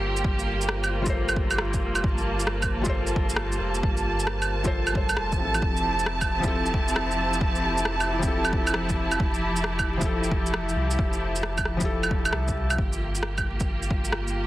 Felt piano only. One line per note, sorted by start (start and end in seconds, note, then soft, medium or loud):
0.00 1.00 G3 loud
0.00 1.02 F4 medium
0.00 1.03 A4 medium
0.00 1.04 A#4 medium
0.00 1.05 C5 loud
1.02 2.80 G3 loud
1.02 2.81 F4 medium
1.06 2.82 A4 medium
1.06 2.83 A#4 medium
1.06 2.84 C5 loud
2.82 4.59 G3 loud
2.82 4.60 F4 medium
2.82 4.61 A4 medium
2.88 4.62 A#4 medium
2.88 4.63 C5 loud
4.63 4.92 G3 loud
4.63 4.92 F4 medium
4.63 4.93 A4 medium
4.63 4.94 A#4 medium
4.67 4.94 C5 loud
4.93 5.37 G3 medium
4.93 5.37 F4 medium
4.93 5.38 A4 medium
4.93 5.38 A#4 medium
4.97 5.39 C5 medium
5.36 6.38 F3 medium
5.36 6.40 C4 medium
5.36 6.40 E4 medium
5.42 6.41 G4 medium
5.42 6.43 A4 medium
6.40 8.17 F3 loud
6.40 8.18 C4 medium
6.40 8.19 E4 medium
6.45 8.20 G4 medium
6.45 8.21 A4 loud
8.19 9.17 F3 loud
8.19 9.18 C4 medium
8.23 9.19 E4 medium
8.23 9.20 G4 medium
8.27 9.21 A4 loud
9.97 11.75 F3 loud
9.97 11.76 E4 medium
10.02 11.78 G4 medium
10.02 11.79 A4 loud
11.77 12.75 F3 loud
11.77 12.76 E4 medium
11.82 12.78 G4 medium
11.82 12.79 A4 loud